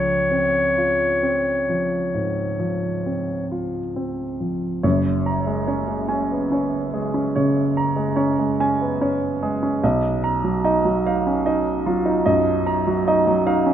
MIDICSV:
0, 0, Header, 1, 3, 480
1, 0, Start_track
1, 0, Key_signature, -5, "major"
1, 0, Tempo, 906344
1, 2564, Time_signature, 12, 3, 24, 8
1, 2564, Key_signature, 6, "major"
1, 2564, Tempo, 841515
1, 4004, Tempo, 818554
1, 6404, Tempo, 800000
1, 7771, End_track
2, 0, Start_track
2, 0, Title_t, "Clarinet"
2, 0, Program_c, 0, 71
2, 0, Note_on_c, 0, 73, 53
2, 1836, Note_off_c, 0, 73, 0
2, 7771, End_track
3, 0, Start_track
3, 0, Title_t, "Grand piano"
3, 0, Program_c, 1, 0
3, 0, Control_c, 1, 64, 127
3, 0, Note_on_c, 1, 37, 38
3, 0, Note_on_c, 1, 53, 26
3, 165, Note_on_c, 1, 60, 30
3, 309, Note_off_c, 1, 53, 0
3, 412, Note_on_c, 1, 65, 29
3, 554, Note_off_c, 1, 60, 0
3, 650, Note_on_c, 1, 60, 27
3, 802, Note_off_c, 1, 65, 0
3, 897, Note_on_c, 1, 53, 26
3, 1038, Note_off_c, 1, 60, 0
3, 1120, Note_off_c, 1, 37, 0
3, 1135, Note_on_c, 1, 44, 28
3, 1279, Note_off_c, 1, 53, 0
3, 1374, Note_on_c, 1, 53, 27
3, 1519, Note_off_c, 1, 44, 0
3, 1621, Note_on_c, 1, 60, 26
3, 1761, Note_off_c, 1, 53, 0
3, 1862, Note_on_c, 1, 65, 29
3, 2002, Note_off_c, 1, 60, 0
3, 2098, Note_on_c, 1, 60, 28
3, 2239, Note_off_c, 1, 65, 0
3, 2332, Note_on_c, 1, 53, 26
3, 2475, Note_off_c, 1, 60, 0
3, 2560, Note_on_c, 1, 30, 46
3, 2560, Note_on_c, 1, 73, 46
3, 2563, Note_on_c, 1, 42, 50
3, 2565, Note_off_c, 1, 53, 0
3, 2574, Control_c, 1, 64, 0
3, 2654, Control_c, 1, 64, 127
3, 2804, Note_on_c, 1, 82, 42
3, 2920, Note_on_c, 1, 56, 38
3, 2949, Note_off_c, 1, 73, 0
3, 3039, Note_on_c, 1, 73, 44
3, 3042, Note_on_c, 1, 61, 42
3, 3114, Note_off_c, 1, 56, 0
3, 3157, Note_on_c, 1, 56, 39
3, 3188, Note_off_c, 1, 82, 0
3, 3235, Note_off_c, 1, 61, 0
3, 3273, Note_on_c, 1, 61, 44
3, 3275, Note_on_c, 1, 80, 48
3, 3352, Note_off_c, 1, 56, 0
3, 3406, Note_on_c, 1, 59, 36
3, 3425, Note_off_c, 1, 73, 0
3, 3471, Note_off_c, 1, 61, 0
3, 3520, Note_on_c, 1, 61, 43
3, 3525, Note_on_c, 1, 73, 42
3, 3526, Note_off_c, 1, 59, 0
3, 3666, Note_off_c, 1, 80, 0
3, 3716, Note_off_c, 1, 61, 0
3, 3758, Note_on_c, 1, 56, 41
3, 3760, Note_on_c, 1, 68, 44
3, 3876, Note_on_c, 1, 61, 43
3, 3910, Note_off_c, 1, 73, 0
3, 3953, Note_off_c, 1, 56, 0
3, 3979, Note_off_c, 1, 30, 0
3, 3981, Note_off_c, 1, 42, 0
3, 3998, Note_on_c, 1, 73, 51
3, 4002, Note_on_c, 1, 49, 46
3, 4071, Note_off_c, 1, 61, 0
3, 4145, Note_off_c, 1, 68, 0
3, 4195, Note_off_c, 1, 49, 0
3, 4242, Note_on_c, 1, 82, 47
3, 4355, Note_on_c, 1, 56, 42
3, 4382, Note_off_c, 1, 73, 0
3, 4470, Note_on_c, 1, 73, 49
3, 4473, Note_on_c, 1, 61, 46
3, 4548, Note_off_c, 1, 56, 0
3, 4604, Note_on_c, 1, 56, 42
3, 4623, Note_off_c, 1, 82, 0
3, 4669, Note_off_c, 1, 61, 0
3, 4729, Note_on_c, 1, 61, 52
3, 4731, Note_on_c, 1, 80, 59
3, 4796, Note_off_c, 1, 56, 0
3, 4853, Note_on_c, 1, 59, 41
3, 4861, Note_off_c, 1, 73, 0
3, 4919, Note_off_c, 1, 61, 0
3, 4968, Note_off_c, 1, 59, 0
3, 4971, Note_on_c, 1, 61, 45
3, 4971, Note_on_c, 1, 73, 48
3, 5113, Note_off_c, 1, 80, 0
3, 5160, Note_off_c, 1, 61, 0
3, 5212, Note_on_c, 1, 68, 53
3, 5213, Note_on_c, 1, 56, 49
3, 5330, Note_on_c, 1, 61, 44
3, 5353, Note_off_c, 1, 73, 0
3, 5402, Note_off_c, 1, 56, 0
3, 5449, Note_off_c, 1, 61, 0
3, 5450, Note_off_c, 1, 68, 0
3, 5451, Note_on_c, 1, 35, 64
3, 5452, Note_on_c, 1, 75, 56
3, 5458, Control_c, 1, 64, 0
3, 5541, Control_c, 1, 64, 127
3, 5688, Note_on_c, 1, 82, 54
3, 5807, Note_on_c, 1, 54, 49
3, 5836, Note_off_c, 1, 75, 0
3, 5927, Note_on_c, 1, 63, 53
3, 5927, Note_on_c, 1, 75, 55
3, 5999, Note_off_c, 1, 54, 0
3, 6048, Note_on_c, 1, 54, 48
3, 6072, Note_off_c, 1, 82, 0
3, 6119, Note_off_c, 1, 63, 0
3, 6173, Note_on_c, 1, 63, 54
3, 6173, Note_on_c, 1, 77, 61
3, 6240, Note_off_c, 1, 54, 0
3, 6292, Note_on_c, 1, 61, 45
3, 6310, Note_off_c, 1, 75, 0
3, 6361, Note_off_c, 1, 63, 0
3, 6404, Note_on_c, 1, 75, 57
3, 6408, Note_off_c, 1, 61, 0
3, 6410, Note_on_c, 1, 63, 52
3, 6554, Note_off_c, 1, 77, 0
3, 6601, Note_off_c, 1, 63, 0
3, 6646, Note_on_c, 1, 65, 56
3, 6647, Note_on_c, 1, 54, 51
3, 6762, Note_on_c, 1, 63, 54
3, 6792, Note_off_c, 1, 75, 0
3, 6840, Note_off_c, 1, 54, 0
3, 6868, Note_off_c, 1, 35, 0
3, 6883, Note_on_c, 1, 75, 64
3, 6885, Note_on_c, 1, 42, 56
3, 6959, Note_off_c, 1, 63, 0
3, 7034, Note_off_c, 1, 65, 0
3, 7081, Note_off_c, 1, 42, 0
3, 7128, Note_on_c, 1, 82, 59
3, 7252, Note_on_c, 1, 54, 50
3, 7272, Note_off_c, 1, 75, 0
3, 7374, Note_on_c, 1, 63, 53
3, 7374, Note_on_c, 1, 75, 63
3, 7443, Note_off_c, 1, 54, 0
3, 7492, Note_on_c, 1, 54, 54
3, 7512, Note_off_c, 1, 82, 0
3, 7563, Note_off_c, 1, 63, 0
3, 7608, Note_on_c, 1, 63, 60
3, 7609, Note_on_c, 1, 77, 62
3, 7681, Note_off_c, 1, 54, 0
3, 7728, Note_on_c, 1, 61, 47
3, 7752, Note_off_c, 1, 75, 0
3, 7771, Note_off_c, 1, 61, 0
3, 7771, Note_off_c, 1, 63, 0
3, 7771, Note_off_c, 1, 77, 0
3, 7771, End_track
0, 0, End_of_file